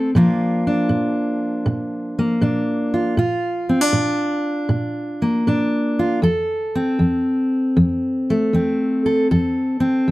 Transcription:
0, 0, Header, 1, 2, 480
1, 0, Start_track
1, 0, Tempo, 764331
1, 72, Time_signature, 4, 2, 24, 8
1, 6350, End_track
2, 0, Start_track
2, 0, Title_t, "Steel-string acoustic guitar"
2, 0, Program_c, 0, 25
2, 0, Note_on_c, 0, 60, 54
2, 78, Note_off_c, 0, 60, 0
2, 94, Note_on_c, 0, 46, 62
2, 100, Note_on_c, 0, 53, 52
2, 103, Note_on_c, 0, 58, 52
2, 107, Note_on_c, 0, 62, 53
2, 112, Note_on_c, 0, 65, 54
2, 418, Note_off_c, 0, 62, 0
2, 421, Note_on_c, 0, 62, 57
2, 531, Note_off_c, 0, 46, 0
2, 560, Note_on_c, 0, 46, 68
2, 1004, Note_off_c, 0, 46, 0
2, 1040, Note_on_c, 0, 46, 65
2, 1365, Note_off_c, 0, 58, 0
2, 1373, Note_on_c, 0, 58, 57
2, 1484, Note_off_c, 0, 46, 0
2, 1512, Note_off_c, 0, 62, 0
2, 1516, Note_on_c, 0, 46, 66
2, 1520, Note_on_c, 0, 62, 55
2, 1842, Note_off_c, 0, 65, 0
2, 1844, Note_on_c, 0, 65, 52
2, 1961, Note_off_c, 0, 46, 0
2, 1976, Note_off_c, 0, 62, 0
2, 1981, Note_off_c, 0, 58, 0
2, 1992, Note_on_c, 0, 46, 65
2, 1998, Note_off_c, 0, 65, 0
2, 2001, Note_on_c, 0, 65, 60
2, 2298, Note_off_c, 0, 53, 0
2, 2319, Note_on_c, 0, 60, 54
2, 2393, Note_off_c, 0, 60, 0
2, 2393, Note_on_c, 0, 62, 44
2, 2439, Note_off_c, 0, 46, 0
2, 2466, Note_on_c, 0, 46, 70
2, 2916, Note_off_c, 0, 46, 0
2, 2944, Note_on_c, 0, 46, 63
2, 3278, Note_on_c, 0, 58, 55
2, 3396, Note_off_c, 0, 46, 0
2, 3431, Note_off_c, 0, 62, 0
2, 3435, Note_on_c, 0, 46, 67
2, 3440, Note_on_c, 0, 62, 58
2, 3761, Note_off_c, 0, 65, 0
2, 3764, Note_on_c, 0, 65, 51
2, 3881, Note_off_c, 0, 46, 0
2, 3894, Note_off_c, 0, 58, 0
2, 3895, Note_off_c, 0, 62, 0
2, 3906, Note_on_c, 0, 41, 66
2, 3912, Note_off_c, 0, 65, 0
2, 3915, Note_on_c, 0, 69, 63
2, 4242, Note_on_c, 0, 60, 58
2, 4357, Note_off_c, 0, 41, 0
2, 4390, Note_on_c, 0, 41, 65
2, 4839, Note_off_c, 0, 41, 0
2, 4877, Note_on_c, 0, 41, 73
2, 5213, Note_on_c, 0, 57, 57
2, 5322, Note_off_c, 0, 41, 0
2, 5358, Note_on_c, 0, 41, 64
2, 5363, Note_off_c, 0, 60, 0
2, 5366, Note_on_c, 0, 60, 56
2, 5675, Note_off_c, 0, 69, 0
2, 5688, Note_on_c, 0, 69, 51
2, 5803, Note_off_c, 0, 41, 0
2, 5820, Note_off_c, 0, 69, 0
2, 5822, Note_off_c, 0, 57, 0
2, 5847, Note_on_c, 0, 41, 61
2, 5847, Note_on_c, 0, 69, 58
2, 6153, Note_off_c, 0, 60, 0
2, 6156, Note_on_c, 0, 60, 59
2, 6288, Note_off_c, 0, 41, 0
2, 6328, Note_on_c, 0, 41, 65
2, 6350, Note_off_c, 0, 41, 0
2, 6350, Note_off_c, 0, 60, 0
2, 6350, Note_off_c, 0, 69, 0
2, 6350, End_track
0, 0, End_of_file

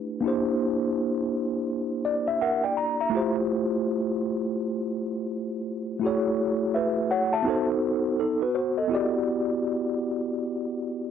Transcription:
0, 0, Header, 1, 2, 480
1, 0, Start_track
1, 0, Key_signature, 1, "minor"
1, 0, Tempo, 722892
1, 165, Time_signature, 4, 2, 24, 8
1, 7375, End_track
2, 0, Start_track
2, 0, Title_t, "Tine electric piano"
2, 0, Program_c, 0, 4
2, 0, Note_on_c, 0, 57, 71
2, 0, Note_on_c, 0, 62, 74
2, 0, Note_on_c, 0, 64, 67
2, 0, Note_on_c, 0, 67, 64
2, 0, Note_on_c, 0, 71, 88
2, 124, Note_off_c, 0, 57, 0
2, 130, Note_off_c, 0, 62, 0
2, 136, Note_off_c, 0, 64, 0
2, 137, Note_on_c, 0, 58, 76
2, 142, Note_off_c, 0, 67, 0
2, 147, Note_off_c, 0, 71, 0
2, 147, Note_on_c, 0, 62, 70
2, 160, Note_on_c, 0, 64, 74
2, 172, Note_on_c, 0, 67, 68
2, 183, Note_on_c, 0, 72, 82
2, 1361, Note_on_c, 0, 74, 73
2, 1503, Note_off_c, 0, 74, 0
2, 1512, Note_on_c, 0, 76, 74
2, 1588, Note_off_c, 0, 72, 0
2, 1594, Note_off_c, 0, 76, 0
2, 1602, Note_on_c, 0, 76, 60
2, 1603, Note_on_c, 0, 78, 67
2, 1608, Note_on_c, 0, 70, 54
2, 1744, Note_off_c, 0, 78, 0
2, 1746, Note_off_c, 0, 76, 0
2, 1749, Note_off_c, 0, 70, 0
2, 1751, Note_on_c, 0, 79, 69
2, 1754, Note_on_c, 0, 74, 58
2, 1837, Note_off_c, 0, 79, 0
2, 1840, Note_on_c, 0, 82, 70
2, 1983, Note_off_c, 0, 74, 0
2, 1987, Note_off_c, 0, 82, 0
2, 1995, Note_on_c, 0, 82, 62
2, 1997, Note_on_c, 0, 76, 57
2, 2045, Note_off_c, 0, 58, 0
2, 2049, Note_off_c, 0, 62, 0
2, 2056, Note_off_c, 0, 64, 0
2, 2056, Note_on_c, 0, 57, 77
2, 2062, Note_off_c, 0, 67, 0
2, 2066, Note_on_c, 0, 64, 68
2, 2079, Note_on_c, 0, 65, 68
2, 2092, Note_on_c, 0, 67, 72
2, 2103, Note_on_c, 0, 72, 81
2, 2223, Note_off_c, 0, 82, 0
2, 2224, Note_off_c, 0, 76, 0
2, 3964, Note_off_c, 0, 57, 0
2, 3969, Note_off_c, 0, 64, 0
2, 3976, Note_off_c, 0, 65, 0
2, 3981, Note_on_c, 0, 57, 74
2, 3982, Note_off_c, 0, 67, 0
2, 3987, Note_off_c, 0, 72, 0
2, 3993, Note_on_c, 0, 64, 64
2, 4005, Note_on_c, 0, 66, 69
2, 4016, Note_on_c, 0, 68, 65
2, 4027, Note_on_c, 0, 73, 81
2, 4478, Note_on_c, 0, 76, 62
2, 4487, Note_off_c, 0, 73, 0
2, 4487, Note_on_c, 0, 71, 54
2, 4710, Note_off_c, 0, 76, 0
2, 4714, Note_off_c, 0, 71, 0
2, 4720, Note_on_c, 0, 78, 76
2, 4723, Note_on_c, 0, 73, 60
2, 4865, Note_off_c, 0, 78, 0
2, 4866, Note_on_c, 0, 81, 73
2, 4867, Note_off_c, 0, 73, 0
2, 4870, Note_on_c, 0, 76, 60
2, 4930, Note_on_c, 0, 59, 77
2, 4934, Note_off_c, 0, 57, 0
2, 4940, Note_off_c, 0, 64, 0
2, 4944, Note_on_c, 0, 63, 72
2, 4946, Note_off_c, 0, 66, 0
2, 4952, Note_off_c, 0, 68, 0
2, 4956, Note_on_c, 0, 66, 76
2, 4966, Note_on_c, 0, 69, 74
2, 4978, Note_on_c, 0, 72, 80
2, 5098, Note_off_c, 0, 81, 0
2, 5100, Note_off_c, 0, 76, 0
2, 5425, Note_off_c, 0, 63, 0
2, 5431, Note_off_c, 0, 66, 0
2, 5434, Note_off_c, 0, 69, 0
2, 5442, Note_off_c, 0, 72, 0
2, 5442, Note_on_c, 0, 69, 63
2, 5446, Note_on_c, 0, 63, 53
2, 5586, Note_off_c, 0, 69, 0
2, 5588, Note_off_c, 0, 63, 0
2, 5590, Note_on_c, 0, 71, 68
2, 5593, Note_on_c, 0, 66, 58
2, 5671, Note_off_c, 0, 66, 0
2, 5675, Note_on_c, 0, 72, 67
2, 5678, Note_off_c, 0, 71, 0
2, 5679, Note_on_c, 0, 66, 55
2, 5822, Note_off_c, 0, 72, 0
2, 5825, Note_off_c, 0, 66, 0
2, 5827, Note_on_c, 0, 75, 65
2, 5832, Note_on_c, 0, 69, 54
2, 5886, Note_off_c, 0, 59, 0
2, 5894, Note_on_c, 0, 59, 78
2, 5906, Note_on_c, 0, 64, 69
2, 5916, Note_on_c, 0, 66, 74
2, 5930, Note_on_c, 0, 67, 71
2, 5940, Note_on_c, 0, 74, 82
2, 6059, Note_off_c, 0, 75, 0
2, 6061, Note_off_c, 0, 69, 0
2, 7375, Note_off_c, 0, 59, 0
2, 7375, Note_off_c, 0, 64, 0
2, 7375, Note_off_c, 0, 66, 0
2, 7375, Note_off_c, 0, 67, 0
2, 7375, Note_off_c, 0, 74, 0
2, 7375, End_track
0, 0, End_of_file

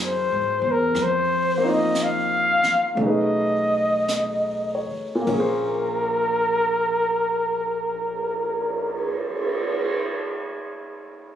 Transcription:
0, 0, Header, 1, 7, 480
1, 0, Start_track
1, 0, Key_signature, -5, "minor"
1, 0, Tempo, 975610
1, 465, Time_signature, 4, 2, 24, 8
1, 954, Tempo, 1045296
1, 1434, Tempo, 1107011
1, 1914, Tempo, 1185771
1, 2394, Tempo, 1219512
1, 4786, End_track
2, 0, Start_track
2, 0, Title_t, "Flugelhorn"
2, 0, Program_c, 0, 56
2, 23, Note_on_c, 0, 72, 76
2, 352, Note_on_c, 0, 70, 83
2, 359, Note_off_c, 0, 72, 0
2, 506, Note_on_c, 0, 72, 72
2, 514, Note_off_c, 0, 70, 0
2, 834, Note_on_c, 0, 75, 79
2, 842, Note_off_c, 0, 72, 0
2, 996, Note_on_c, 0, 77, 100
2, 1003, Note_off_c, 0, 75, 0
2, 1454, Note_off_c, 0, 77, 0
2, 1479, Note_on_c, 0, 75, 75
2, 2242, Note_off_c, 0, 75, 0
2, 2416, Note_on_c, 0, 70, 66
2, 3945, Note_off_c, 0, 70, 0
2, 4786, End_track
3, 0, Start_track
3, 0, Title_t, "Grand piano"
3, 0, Program_c, 1, 0
3, 0, Control_c, 1, 64, 127
3, 0, Note_on_c, 1, 56, 39
3, 0, Note_on_c, 1, 61, 39
3, 0, Note_on_c, 1, 64, 41
3, 0, Note_on_c, 1, 66, 39
3, 0, Note_on_c, 1, 70, 46
3, 463, Note_off_c, 1, 56, 0
3, 469, Note_off_c, 1, 61, 0
3, 469, Note_off_c, 1, 64, 0
3, 472, Control_c, 1, 64, 0
3, 475, Note_off_c, 1, 66, 0
3, 477, Note_off_c, 1, 70, 0
3, 558, Control_c, 1, 64, 127
3, 775, Note_on_c, 1, 58, 47
3, 787, Note_on_c, 1, 60, 46
3, 802, Note_on_c, 1, 63, 47
3, 812, Note_on_c, 1, 65, 46
3, 828, Note_on_c, 1, 72, 55
3, 1416, Note_on_c, 1, 57, 39
3, 1425, Note_off_c, 1, 58, 0
3, 1428, Note_on_c, 1, 61, 42
3, 1431, Note_off_c, 1, 60, 0
3, 1437, Note_off_c, 1, 63, 0
3, 1440, Control_c, 1, 64, 0
3, 1442, Note_off_c, 1, 65, 0
3, 1444, Note_on_c, 1, 63, 39
3, 1449, Note_off_c, 1, 72, 0
3, 1456, Note_on_c, 1, 68, 39
3, 1468, Note_on_c, 1, 71, 45
3, 1513, Control_c, 1, 64, 127
3, 1923, Note_on_c, 1, 75, 36
3, 2180, Note_on_c, 1, 73, 42
3, 2303, Note_off_c, 1, 75, 0
3, 2343, Note_on_c, 1, 46, 51
3, 2370, Note_on_c, 1, 58, 46
3, 2387, Note_off_c, 1, 57, 0
3, 2392, Note_off_c, 1, 61, 0
3, 2399, Note_off_c, 1, 63, 0
3, 2399, Note_on_c, 1, 61, 47
3, 2400, Control_c, 1, 64, 0
3, 2404, Note_off_c, 1, 68, 0
3, 2410, Note_off_c, 1, 71, 0
3, 2417, Note_on_c, 1, 68, 40
3, 2442, Note_on_c, 1, 72, 56
3, 2456, Control_c, 1, 64, 127
3, 2515, Note_off_c, 1, 73, 0
3, 3889, Note_off_c, 1, 46, 0
3, 3915, Note_off_c, 1, 58, 0
3, 3944, Note_off_c, 1, 61, 0
3, 3962, Note_off_c, 1, 68, 0
3, 3987, Note_off_c, 1, 72, 0
3, 4786, End_track
4, 0, Start_track
4, 0, Title_t, "Upright bass"
4, 0, Program_c, 2, 32
4, 0, Note_on_c, 2, 42, 74
4, 129, Note_off_c, 2, 42, 0
4, 157, Note_on_c, 2, 44, 52
4, 300, Note_off_c, 2, 44, 0
4, 303, Note_on_c, 2, 40, 57
4, 452, Note_off_c, 2, 40, 0
4, 465, Note_on_c, 2, 41, 76
4, 1260, Note_off_c, 2, 41, 0
4, 1427, Note_on_c, 2, 35, 70
4, 2218, Note_off_c, 2, 35, 0
4, 2391, Note_on_c, 2, 34, 74
4, 3920, Note_off_c, 2, 34, 0
4, 4786, End_track
5, 0, Start_track
5, 0, Title_t, "Cymbal swell"
5, 2718, Note_on_c, 9, 59, 40
5, 4219, Note_off_c, 9, 59, 0
5, 4786, End_track
6, 0, Start_track
6, 0, Title_t, "Muted upright bass strokes"
6, 1281, Note_on_c, 9, 29, 34
6, 1327, Note_off_c, 9, 29, 0
6, 2235, Note_on_c, 9, 29, 28
6, 2275, Note_off_c, 9, 29, 0
6, 4786, End_track
7, 0, Start_track
7, 0, Title_t, "Drums"
7, 468, Note_on_c, 9, 25, 32
7, 468, Note_on_c, 9, 38, 25
7, 517, Note_off_c, 9, 38, 0
7, 958, Note_on_c, 9, 38, 41
7, 958, Note_on_c, 9, 44, 51
7, 1004, Note_off_c, 9, 38, 0
7, 1004, Note_off_c, 9, 44, 0
7, 1273, Note_on_c, 9, 38, 24
7, 1319, Note_off_c, 9, 38, 0
7, 1432, Note_off_c, 9, 25, 0
7, 1432, Note_on_c, 9, 25, 30
7, 1910, Note_on_c, 9, 38, 37
7, 1910, Note_on_c, 9, 44, 51
7, 1951, Note_off_c, 9, 38, 0
7, 1951, Note_off_c, 9, 44, 0
7, 2390, Note_on_c, 9, 36, 42
7, 2390, Note_on_c, 9, 51, 49
7, 2430, Note_off_c, 9, 36, 0
7, 2430, Note_off_c, 9, 51, 0
7, 2783, Note_off_c, 9, 25, 0
7, 4786, End_track
0, 0, End_of_file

